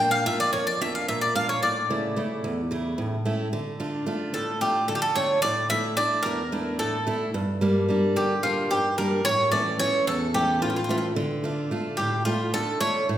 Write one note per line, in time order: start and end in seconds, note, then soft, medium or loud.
0.00 0.25 A#2 medium
0.00 0.25 A#3 soft
0.00 0.25 D4 soft
0.00 0.26 F4 soft
0.00 0.11 G5 medium
0.11 0.24 F5 medium
0.26 0.70 A#3 soft
0.26 0.70 D4 soft
0.26 0.70 F4 medium
0.26 0.39 E5 loud
0.40 0.52 D5 medium
0.53 1.06 F2 medium
0.53 0.66 C#5 medium
0.67 0.80 D5 medium
0.81 1.24 A#3 soft
0.81 1.25 D4 soft
0.81 1.25 F4 medium
0.81 0.95 E5 medium
0.95 1.08 F5 medium
1.08 1.61 A#2 medium
1.08 1.21 E5 medium
1.21 1.34 D5 medium
1.35 1.57 A#3 soft
1.35 1.57 D4 soft
1.35 1.58 F4 medium
1.35 1.48 F5 medium
1.49 1.62 C#5 medium
1.63 2.16 A2 medium
1.63 3.22 D5 medium
1.90 2.16 C#3 medium
1.90 2.15 A3 soft
1.90 2.16 E4 medium
2.16 2.44 C#3 soft
2.16 2.60 A3 soft
2.16 2.60 E4 medium
2.44 2.97 E2 medium
2.71 3.15 C#3 soft
2.71 3.15 A3 soft
2.71 3.15 E4 medium
2.98 3.51 A2 medium
3.25 3.47 A3 soft
3.25 3.48 C#4 soft
3.25 3.48 E4 soft
3.53 4.06 D3 medium
3.80 4.05 A3 medium
3.80 4.06 D4 soft
3.80 4.06 F4 medium
4.06 4.50 A3 soft
4.06 4.51 D4 soft
4.06 4.51 F4 medium
4.34 4.87 A2 medium
4.34 4.60 A4 medium
4.61 5.05 A3 soft
4.61 5.05 D4 soft
4.61 5.05 F4 medium
4.61 4.88 G4 medium
4.88 5.42 D3 medium
4.88 4.95 A4 medium
4.95 5.01 G4 medium
5.02 5.15 A4 medium
5.16 5.38 A3 medium
5.16 5.38 D4 soft
5.16 5.39 F4 medium
5.16 5.42 C#5 medium
5.42 5.97 A2 medium
5.42 5.69 D5 loud
5.70 5.97 A3 soft
5.70 5.97 D4 soft
5.70 5.97 E4 medium
5.70 5.96 E5 loud
5.97 6.42 A3 soft
5.97 6.42 D4 soft
5.97 6.42 E4 medium
5.97 6.25 D5 loud
6.23 6.78 E2 medium
6.23 6.75 A#4 medium
6.52 6.96 A3 medium
6.52 6.96 D4 soft
6.52 6.96 E4 medium
6.79 7.33 A2 medium
6.79 7.30 A4 medium
7.07 7.29 A3 soft
7.07 7.29 D4 soft
7.07 7.29 E4 medium
7.34 7.87 G2 medium
7.61 7.88 G3 medium
7.61 7.88 A#3 soft
7.61 7.88 D4 medium
7.89 8.33 G3 soft
7.89 8.33 A#3 soft
7.89 8.33 D4 medium
8.16 8.69 D3 medium
8.16 8.42 G4 medium
8.43 8.87 G3 soft
8.43 8.87 A#3 soft
8.43 8.88 D4 medium
8.43 8.69 F4 medium
8.71 9.24 G2 medium
8.71 8.98 G4 medium
8.98 9.20 G3 soft
8.98 9.20 A#3 soft
8.98 9.21 D4 medium
8.98 9.23 A#4 medium
9.25 9.78 A2 medium
9.25 9.51 C#5 loud
9.52 9.79 E3 soft
9.52 9.79 A3 soft
9.52 9.80 C#4 soft
9.52 9.77 D5 medium
9.79 10.24 E3 soft
9.79 10.24 A3 soft
9.79 10.24 C#4 medium
9.79 10.05 C#5 loud
10.07 10.60 E2 medium
10.07 10.35 A4 medium
10.34 10.78 E3 soft
10.34 10.79 A3 soft
10.34 10.79 C#4 soft
10.34 10.62 G4 medium
10.62 11.15 A2 medium
10.62 10.69 F4 medium
10.70 10.75 F4 soft
10.76 10.83 F4 medium
10.84 10.89 F4 medium
10.89 11.11 E3 soft
10.89 11.11 A3 soft
10.89 11.11 C#4 soft
10.89 10.97 F4 medium
10.98 11.05 F4 medium
11.16 11.70 D3 medium
11.44 11.70 A3 medium
11.44 11.70 D4 soft
11.44 11.71 F4 medium
11.71 12.15 A3 soft
11.71 12.15 D4 soft
11.71 12.16 F4 soft
11.97 12.52 A2 medium
11.97 12.23 G4 medium
12.25 12.70 A3 soft
12.25 12.70 D4 soft
12.25 12.51 F4 medium
12.25 12.71 F4 medium
12.54 13.07 D3 medium
12.54 12.80 A4 loud
12.81 13.03 A3 medium
12.81 13.03 D4 soft
12.81 13.03 F4 soft
12.81 13.06 C#5 medium
13.09 13.18 A2 medium